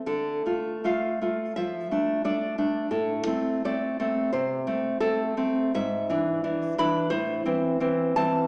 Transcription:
\new Staff \with { instrumentName = "Nylon-string guitar" } { \time 2/4 \key d \minor \tempo 4 = 86 << { a'4 f''4 | e''4 d''4 | a'4 d''4 | c''4 a'4 |
\key a \minor e''4. b''8 | c''4. a''8 | } \\ { d8 <a f'>8 <a f'>8 <a f'>8 | f8 <a d'>8 <a d'>8 <a d'>8 | a,8 <a c'>8 <a c'>8 <a c'>8 | c8 <a c'>8 <a c'>8 <a c'>8 |
gis,8 <e d'>8 <e d'>8 <e d'>8 | a,8 <e c'>8 <e c'>8 <e c'>8 | } >> }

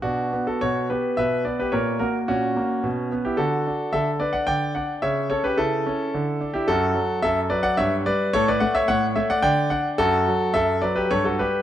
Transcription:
<<
  \new Staff \with { instrumentName = "Grand piano" } { \time 3/4 \key b \minor \tempo 4 = 109 <d' fis'>8. <fis' a'>16 <fis' cis''>8 <g' b'>8 <b' e''>8 <b' d''>16 <g' b'>16 | <ais' cis''>8 <fis' ais'>8 <cis' fis'>4.~ <cis' fis'>16 <e' g'>16 | <fis' a'>4 <a' e''>8 <b' d''>16 <d'' fis''>16 <d'' g''>8 <d'' fis''>8 | <cis'' e''>8 <a' cis''>16 <g' b'>16 <e' a'>4.~ <e' a'>16 <e' g'>16 |
\key d \major <fis' a'>4 <a' e''>8 <b' d''>16 <d'' fis''>16 <cis'' e''>8 <b' d''>8 | <a' cis''>16 <b' d''>16 <d'' fis''>16 <cis'' e''>16 <cis'' fis''>8 <cis'' e''>16 <d'' fis''>16 <d'' g''>8 <d'' fis''>8 | <fis' a'>4 <a' e''>8 <b' d''>16 <g' b'>16 <a' cis''>16 <fis' a'>16 <g' b'>8 | }
  \new Staff \with { instrumentName = "Grand piano" } { \clef bass \time 3/4 \key b \minor b,8 b8 b,8 b8 b,8 b8 | ais,8 ais8 ais,8 ais8 b,8 b8 | d8 d'8 d8 d'8 d8 d'8 | cis8 cis'8 cis8 cis'8 d8 d'8 |
\key d \major fis,8 fis8 fis,8 fis8 g,8 g8 | a,8 a8 a,8 a8 d8 d'8 | fis,8 fis8 fis,8 fis8 g,8 g8 | }
>>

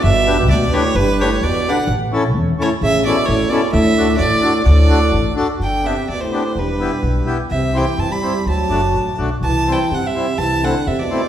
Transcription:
<<
  \new Staff \with { instrumentName = "Fiddle" } { \time 2/4 \key d \major \tempo 4 = 127 e''4 d''8 cis''8 | b'8 cis''8 d''8 fis''8 | r4. cis''8 | e''8 d''8 cis''8 d''8 |
e''4 d''4 | d''4. r8 | \key g \major g''8 e''8 d''16 c''8. | b'4. r8 |
e''8 g''8 a''16 b''8. | a''4. r8 | a''8 g''8 fis''16 e''8. | a''8 fis''8 e''16 d''8. | }
  \new Staff \with { instrumentName = "Accordion" } { \time 2/4 \key d \major r8 <d' g' b'>8 r8 <d' g' b'>8 | r8 <d' g' b'>8 r8 <d' g' b'>8 | r8 <cis' e' a'>8 r8 <cis' e' a'>8 | r8 <cis' e' a'>8 r8 <cis' e' a'>8 |
r8 <d' fis' a'>8 r8 <d' fis' a'>8 | r8 <d' fis' a'>8 r8 <d' fis' a'>8 | \key g \major r8 <b d' g'>8 r8 <b d' g'>8 | r8 <b e' g'>8 r8 <b e' g'>8 |
r8 <c' e' g'>8 r8 <c' e' g'>8 | r8 <a d' fis'>8 r8 <a d' fis'>8 | r8 <g c' e'>8 r8 <g c' e'>8 | r8 <a c' e'>8 r8 <a c' e'>8 | }
  \new Staff \with { instrumentName = "Euphonium" } { \clef bass \time 2/4 \key d \major b,4 b,8 a,8 | g,8 a,8 b,8 d8 | r4. a,8 | cis8 b,8 a,8 b,8 |
a,4 a,4 | a,4. r8 | \key g \major d8 c8 b,16 a,8. | g,4. r8 |
c8 e8 e16 g8. | fis4. r8 | e8 e8 c16 c8. | e8 d8 c16 b,8. | }
  \new Staff \with { instrumentName = "Upright bass" } { \clef bass \time 2/4 \key d \major g,,4 d,8 r8 | g,,4 e,8 r8 | a,,4 e,8 r8 | a,,4 a,,8 r8 |
d,4 a,,8 r8 | d,4 a,,8 r8 | \key g \major g,,4 d,8 r8 | e,,4 b,,8 r8 |
c,4 g,8 r8 | d,8 fis,,8 a,,8 b,,8 | c,4 g,8 r8 | c,4 e,8 r8 | }
>>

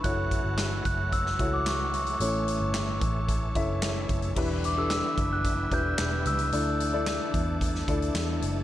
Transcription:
<<
  \new Staff \with { instrumentName = "Glockenspiel" } { \time 4/4 \key e \dorian \tempo 4 = 111 fis'''4. fis'''8 e'''8. d'''16 cis'''8 cis'''8~ | cis'''2. r4 | r8 d'''16 e'''16 e'''8. fis'''8. g'''4 e'''8~ | e'''2~ e'''8 r4. | }
  \new Staff \with { instrumentName = "Grand piano" } { \time 4/4 \key e \dorian <e' fis' a' cis''>4. r4 <e' fis' a' cis''>4 r8 | <cis' e' a' cis''>4. r4 <cis' e' a' e''>4 r8 | <d' e' g' b'>8 r16 <d' e' g' a'>4~ <d' e' g' a'>16 r8 <d' e' g' b'>4 r8 | <d' e' a' d''>8 r16 <d' e' a' d''>4~ <d' e' a' d''>16 r8 <d' e' a' d''>4 r8 | }
  \new Staff \with { instrumentName = "Grand piano" } { \clef bass \time 4/4 \key e \dorian r1 | a,4. r2 r8 | e4. r2 r8 | d4. r2 r8 | }
  \new Staff \with { instrumentName = "Tonewheel organ" } { \time 4/4 \key e \dorian fis'1 | r1 | <d e'>1 | d'1 | }
  \new Staff \with { instrumentName = "Tonewheel organ" } { \clef bass \time 4/4 \key e \dorian << { <e a cis'>1~ | <e a cis'>1 | <g b>1 | a1 | } \\ { fis1 | r1 | e1~ | e1 | } >> }
  \new Staff \with { instrumentName = "Fingered electric bass" } { \clef bass \time 4/4 \key e \dorian fis,,8. g,,8. fis,,4 cis,4. | a,,8. g,,8. a,,4 fis,,4 fis,,8 | e,,4~ e,,16 r16 fis,,4 e,,8 e,,8 cis,8 | d,4~ d,16 r16 e,4 d,8 e,8 fis,,8 | }
  \new DrumStaff \with { instrumentName = "Drums" } \drummode { \time 4/4 <hh bd>8 <hh bd>8 <hc hh sn>8 <hh bd>8 <hh bd>16 sn16 <hh bd>8 <hc hh sn>8 hh16 hh16 | hh8 hh8 <hc hh sn>8 <hh bd>8 <hh bd>8 <hh bd>8 <hc hh sn>8 <hh bd>16 hh16 | <cymc bd>8 hh8 <hc hh sn>8 <hh bd>8 <hh bd>8 <hh bd>8 <hc hh sn>8 hh16 hh16 | hh8 hh8 <hc hh sn>8 <hh bd>8 <hh bd>16 sn16 <hh bd>16 hh16 <hc hh sn>8 hh8 | }
>>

